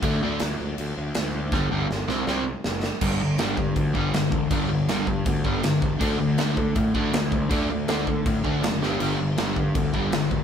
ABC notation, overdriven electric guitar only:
X:1
M:4/4
L:1/8
Q:1/4=160
K:Dmix
V:1 name="Overdriven electric guitar" clef=bass
[D,A,D] [D,A,D] z6 | [G,,D,G,] [G,,D,G,] z [C,G,C] [C,G,C] z3 | [G,,D,G,] [G,,D,] [G,,D,G,] [G,,D,] [G,,D,] [G,,D,G,] [G,,D,] [G,,D,] | [G,,D,G,] [G,,D,] [G,,D,G,] [G,,D,] [G,,D,] [G,,D,G,] [G,,D,] [G,,D,] |
[D,A,D] [D,A,] [D,A,D] [D,A,] [D,A,] [D,A,D] [D,A,] [D,A,] | [D,A,D] [D,A,] [D,A,D] [D,A,] [D,A,] [D,A,D] [D,A,] [G,,D,G,] | [G,,D,G,] [G,,D,] [G,,D,G,] [G,,D,] [G,,D,] [G,,D,G,] [G,,D,] [G,,D,] |]